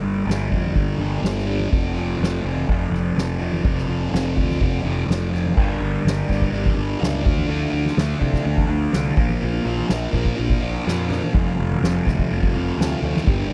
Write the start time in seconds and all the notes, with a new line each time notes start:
Already playing: G2 G3 A#3 A4 D5
0.02 G1 D3 G3, ride
0.26 G1 G2 D3 G3, ride
0.30 snare
0.50 F2 G2 D3 G3, kick, ride, low conga
0.63 high conga
0.74 G1 G2 D3 G3, kick, ride
0.98 G1 G2 D3 G3, ride, high conga
1.22 G1 G2 D3 G3, snare, ride
1.38 snare
1.46 D3 G3, ride
1.60 high conga
1.70 F1 F2 C3 F3 C4 A4, kick, ride
1.94 C3 F3, ride
2.18 F1 F2 C3 F3, ride
2.23 snare
2.43 F1 F2 C3 F3, ride, low conga
2.56 high conga
2.67 F1 F2 C3 F3, kick, ride
2.90 F1 F2 C3 F3, snare, ride, high conga
3.16 F1 F2 C3 F3, snare, ride
3.39 C3 F3, ride, low conga
3.52 high conga
3.62 F1 F2 C3, kick, ride
3.67 F3
3.78 snare
3.88 F1 C3 F3, ride
4.10 F1 F2 C3 F3, ride
4.15 snare
4.35 D2 F2 C3 F3, kick, ride, low conga
4.49 snare, high conga
4.59 F1 F2 C3 F3, kick, ride
4.82 F1 F2 C3 F3, ride, high conga
5.06 F1 F2 C3 F3, ride
5.10 snare
5.30 C3 F3, ride, low conga
5.34 snare
5.47 high conga
5.54 G1 G2 D3 G3 D4 A#4 D5, kick, crash
5.80 G1 D3 G3, ride
6.03 G1 G2 D3 G3, snare, ride
6.28 G1 G2 D3 G3, kick, snare, ride
6.42 kick
6.51 G1 G2 D3 G3, ride
6.65 kick, high conga
6.75 G1 G2 D3 G3, ride
6.99 C#2 G2 D3 G3, snare, ride
7.22 D3 F3 A3 D4 A4 F5, kick, low conga
7.26 D2, ride
7.37 high conga
7.47 D2 D3 A3 D4, ride
7.70 D2 A3 D4, ride
7.86 snare, high conga
7.95 D2 D3 A3 D4, snare, ride
8.20 C3 D3 A3 D4, kick, ride, low conga
8.33 kick, snare
8.43 D2 D3 A3 D4, ride
8.57 kick, high conga
8.67 D2 D3 A3 D4, ride
8.92 C2 D3 A3 D4, snare, ride
9.16 A#1 A#2 F3 A#3 A#4, kick, ride, low conga
9.29 high conga
9.41 A#1 A#2 F3, ride
9.45 A#3
9.64 A#1 F3 A#3, ride
9.78 high conga
9.88 A#1 A#2 F3, snare, ride
9.92 A#3
10.12 A#1 A#2 F3 A#3, kick, ride, low conga
10.25 kick
10.36 A#1 A#2 F3 A#3, ride
10.50 kick
10.60 A#1 A#2 F3 A#3, ride
10.85 F2 A#2 F3 A#3, snare, ride
11.09 F3 A#3, snare, ride, low conga
11.23 high conga
11.33 F1 F2 C3 F3 G3 C4 A4 F5, kick, ride
11.57 F1 C3 F3, ride
11.72 high conga
11.80 F1 F2 C3 F3, snare, ride
12.05 D2 F2 C3 F3, kick, snare, ride
12.19 kick
12.29 F1 F2 C3 F3, ride
12.43 kick, high conga
12.54 F1 F2 C3 F3, ride, low conga
12.78 D2 F2 C3, snare, ride
12.82 F3
13.02 D2 F3, ride, low conga
13.06 C3
13.16 snare, high conga
13.26 G1 G2 D3 G3 D4 A#4 G5, kick, ride